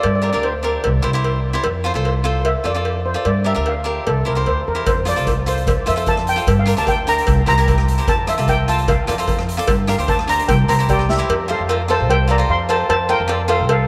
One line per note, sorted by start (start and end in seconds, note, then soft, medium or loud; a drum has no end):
0.03 0.29 G2 loud
0.03 0.14 D5 medium
0.03 cowbell medium
0.15 0.21 D5 medium
0.22 0.29 D4 medium
0.22 0.30 G4 medium
0.22 0.30 A#4 medium
0.22 0.29 D5 medium
0.30 0.52 D4 medium
0.30 0.52 G4 medium
0.30 0.37 D5 medium
0.34 0.76 D2 medium
0.34 0.52 A#4 medium
0.43 1.41 C5 medium
0.43 cowbell medium
0.63 0.84 D4 medium
0.63 0.84 G4 medium
0.63 0.84 A#4 medium
0.84 1.01 C2 loud
0.84 cowbell medium
1.02 1.54 C2 medium
1.02 1.10 E4 medium
1.02 1.10 G4 medium
1.02 1.10 C5 medium
1.02 cowbell medium
1.13 1.38 E4 medium
1.13 1.39 G4 medium
1.13 1.39 C5 medium
1.24 cowbell medium
1.53 1.64 E4 medium
1.53 1.64 G4 medium
1.53 1.65 C5 medium
1.64 1.90 F2 loud
1.64 cowbell medium
1.84 1.91 F4 medium
1.84 1.91 A4 medium
1.84 1.92 C5 medium
1.94 2.52 C2 medium
1.94 2.13 F4 medium
1.94 2.13 A4 medium
1.94 2.14 C5 medium
2.05 cowbell medium
2.24 2.49 F4 medium
2.24 2.49 A4 medium
2.24 2.50 C5 loud
2.45 2.66 E5 medium
2.45 cowbell medium
2.64 3.14 F2 medium
2.64 2.71 F4 medium
2.64 2.71 A4 medium
2.64 2.72 D5 medium
2.64 3.07 D5 medium
2.64 cowbell medium
2.75 2.99 F4 medium
2.75 3.00 A4 medium
2.75 3.00 D5 medium
2.85 cowbell medium
3.06 3.26 C5 medium
3.14 3.25 F4 medium
3.14 3.25 A4 medium
3.14 3.26 D5 medium
3.25 3.51 G2 loud
3.25 3.45 D5 medium
3.25 cowbell medium
3.44 3.51 D4 medium
3.44 3.52 G4 medium
3.44 3.52 A#4 medium
3.44 3.67 E5 medium
3.55 3.97 D2 medium
3.55 3.73 D4 medium
3.55 3.74 G4 medium
3.55 3.74 A#4 medium
3.66 4.09 F5 medium
3.66 cowbell medium
3.84 4.05 D4 medium
3.84 4.06 G4 medium
3.84 4.06 A#4 medium
4.07 4.23 C2 loud
4.07 4.16 A4 medium
4.07 cowbell medium
4.25 4.43 C2 medium
4.25 4.32 E4 medium
4.25 4.32 G4 medium
4.25 4.48 A#4 medium
4.25 4.33 C5 medium
4.35 4.60 E4 medium
4.35 4.60 G4 medium
4.35 4.61 C5 medium
4.46 4.65 D2 medium
4.46 4.68 C5 medium
4.46 cowbell medium
4.68 4.85 E2 medium
4.68 4.86 A#4 medium
4.75 4.86 E4 medium
4.75 4.86 G4 medium
4.75 4.86 C5 medium
4.86 5.12 F2 loud
4.86 5.08 C5 medium
4.86 kick loud
4.86 closed hi-hat medium
4.86 cowbell loud
5.05 5.12 F4 medium
5.05 5.13 A4 medium
5.05 5.13 C5 medium
5.05 5.49 D5 medium
5.05 cross-stick medium
5.05 closed hi-hat medium
5.16 5.75 C2 medium
5.16 5.35 F4 medium
5.16 5.35 A4 medium
5.16 5.35 D5 medium
5.16 closed hi-hat medium
5.27 kick medium
5.27 closed hi-hat medium
5.27 cowbell medium
5.46 5.71 F4 medium
5.46 5.71 A4 medium
5.46 5.72 C5 medium
5.46 5.67 C5 medium
5.46 closed hi-hat medium
5.57 closed hi-hat medium
5.67 kick loud
5.67 closed hi-hat medium
5.67 cowbell loud
5.86 6.37 F2 medium
5.86 5.93 F4 medium
5.86 5.93 A4 medium
5.86 5.93 C5 medium
5.86 6.08 E5 medium
5.86 cross-stick medium
5.86 closed hi-hat medium
5.86 cowbell medium
5.96 6.21 F4 medium
5.96 6.21 A4 medium
5.96 6.21 C5 medium
5.96 closed hi-hat medium
6.06 6.29 A5 loud
6.06 kick medium
6.06 closed hi-hat medium
6.06 cowbell medium
6.17 cross-stick medium
6.27 6.57 G5 medium
6.27 closed hi-hat medium
6.36 6.47 F4 medium
6.36 6.47 A4 medium
6.36 6.47 C5 medium
6.36 closed hi-hat medium
6.47 6.72 G2 loud
6.47 kick loud
6.47 closed hi-hat medium
6.47 cowbell loud
6.59 6.79 F5 medium
6.66 6.73 D4 medium
6.66 6.73 G4 medium
6.66 6.74 A#4 medium
6.66 cross-stick medium
6.66 closed hi-hat medium
6.77 7.18 D2 medium
6.77 6.95 D4 medium
6.77 6.96 G4 medium
6.77 6.96 A#4 medium
6.77 6.88 A5 loud
6.77 closed hi-hat medium
6.87 6.97 G5 loud
6.87 kick medium
6.87 closed hi-hat medium
6.87 cowbell medium
7.07 7.27 D4 medium
7.07 7.28 G4 medium
7.07 7.28 A#4 medium
7.07 7.47 A#5 loud
7.07 closed hi-hat medium
7.18 closed hi-hat medium
7.27 7.44 C2 loud
7.27 kick loud
7.27 closed hi-hat medium
7.27 cowbell medium
7.46 7.97 C2 loud
7.46 7.53 E4 medium
7.46 7.54 G4 medium
7.46 7.54 C5 medium
7.46 8.10 A#5 loud
7.46 cross-stick medium
7.46 closed hi-hat medium
7.46 cowbell medium
7.58 7.82 E4 medium
7.58 7.82 G4 medium
7.58 7.82 A#4 medium
7.58 closed hi-hat medium
7.68 kick medium
7.68 closed hi-hat medium
7.68 cowbell medium
7.78 cross-stick medium
7.88 closed hi-hat medium
7.98 8.08 E4 medium
7.98 8.08 G4 medium
7.98 8.09 C5 medium
7.98 closed hi-hat medium
8.07 8.33 F2 loud
8.07 8.29 A5 loud
8.07 kick loud
8.07 closed hi-hat medium
8.07 cowbell medium
8.27 8.34 F4 medium
8.27 8.34 A4 medium
8.27 8.35 C5 medium
8.27 8.49 E5 loud
8.27 cross-stick medium
8.27 closed hi-hat medium
8.38 8.95 C2 medium
8.38 8.56 F4 medium
8.38 8.56 A4 medium
8.38 8.57 D5 medium
8.38 closed hi-hat medium
8.48 8.69 G5 loud
8.48 kick medium
8.48 closed hi-hat medium
8.48 cowbell medium
8.68 8.92 F4 medium
8.68 8.92 A4 medium
8.68 8.93 C5 medium
8.68 8.89 A5 medium
8.68 closed hi-hat medium
8.78 closed hi-hat medium
8.88 9.26 F5 medium
8.88 kick loud
8.88 closed hi-hat medium
8.88 cowbell medium
9.07 9.57 F2 loud
9.07 9.14 F4 medium
9.07 9.14 A4 medium
9.07 9.15 D5 medium
9.07 cross-stick medium
9.07 closed hi-hat medium
9.07 cowbell medium
9.18 9.42 F4 medium
9.18 9.43 A4 medium
9.18 9.43 C5 medium
9.18 closed hi-hat medium
9.28 kick medium
9.28 closed hi-hat medium
9.28 cowbell medium
9.39 cross-stick medium
9.49 closed hi-hat medium
9.57 9.68 F4 medium
9.57 9.68 A4 medium
9.57 9.69 D5 loud
9.57 closed hi-hat medium
9.68 9.93 G2 loud
9.68 kick loud
9.68 closed hi-hat medium
9.68 cowbell loud
9.87 9.94 D4 medium
9.87 9.95 G4 medium
9.87 9.95 A#4 medium
9.87 9.98 F5 medium
9.87 cross-stick medium
9.87 closed hi-hat medium
9.98 10.39 D2 medium
9.98 10.17 D4 medium
9.98 10.17 G4 medium
9.98 10.17 C5 medium
9.98 closed hi-hat medium
10.08 10.30 A5 medium
10.08 kick medium
10.08 closed hi-hat medium
10.08 cowbell medium
10.19 cross-stick medium
10.28 10.48 D4 medium
10.28 10.48 G4 medium
10.28 10.49 C5 medium
10.28 10.50 A#5 loud
10.28 closed hi-hat medium
10.39 closed hi-hat medium
10.48 10.65 C2 loud
10.48 10.69 G5 loud
10.48 kick loud
10.48 closed hi-hat medium
10.48 cowbell medium
10.68 11.18 C2 medium
10.68 10.75 E4 medium
10.68 10.75 G4 medium
10.68 10.75 C5 medium
10.68 10.87 A#5 medium
10.68 cross-stick medium
10.68 closed hi-hat medium
10.68 cowbell medium
10.79 11.03 E4 medium
10.79 11.03 G4 medium
10.79 11.04 C5 medium
10.79 closed hi-hat medium
10.88 11.08 G4 medium
10.88 11.10 D5 medium
10.88 11.27 G5 medium
10.88 kick medium
10.88 closed hi-hat medium
10.88 cowbell medium
10.99 cross-stick medium
11.09 11.47 G4 medium
11.09 11.50 E5 medium
11.09 snare medium
11.18 11.28 E4 medium
11.18 11.29 G4 medium
11.18 11.29 C5 medium
11.29 11.54 F2 loud
11.29 cowbell loud
11.48 11.61 F4 medium
11.48 11.61 A4 medium
11.48 11.87 A4 medium
11.48 11.61 C5 medium
11.48 11.87 F5 medium
11.60 12.01 F2 medium
11.69 11.81 F4 medium
11.69 11.81 A4 medium
11.69 11.82 C5 medium
11.69 cowbell medium
11.88 12.13 F4 medium
11.88 12.13 A4 medium
11.88 12.14 C5 medium
11.88 12.08 C5 medium
11.88 12.11 A5 medium
11.88 cowbell medium
12.00 12.40 C2 medium
12.10 12.28 C5 medium
12.10 12.30 G5 loud
12.10 cowbell loud
12.28 12.34 F4 medium
12.28 12.35 A4 medium
12.28 12.36 D5 medium
12.28 12.49 D5 medium
12.28 12.51 A#5 medium
12.28 cowbell medium
12.38 12.57 F4 medium
12.38 12.57 A4 medium
12.38 12.57 C5 medium
12.49 12.82 F2 medium
12.49 12.68 F5 medium
12.49 12.69 C6 loud
12.69 12.93 F4 medium
12.69 12.93 A4 medium
12.69 12.88 C5 medium
12.69 12.94 C5 medium
12.69 12.88 A5 medium
12.69 cowbell medium
12.89 13.14 F2 loud
12.89 13.08 C5 medium
12.89 13.10 A5 loud
12.89 cowbell loud
13.09 13.21 F4 medium
13.09 13.22 A4 medium
13.09 13.46 A#4 medium
13.09 13.22 C5 medium
13.09 13.47 G5 loud
13.20 13.61 F2 medium
13.28 13.41 F4 medium
13.28 13.41 A4 medium
13.28 13.41 D5 medium
13.28 cowbell medium
13.48 13.73 F4 medium
13.48 13.73 A4 medium
13.48 13.58 A4 medium
13.48 13.73 C5 medium
13.48 13.59 F5 loud
13.48 cowbell medium
13.59 13.88 C2 medium
13.69 13.88 A4 medium
13.69 13.88 F5 loud
13.69 cowbell medium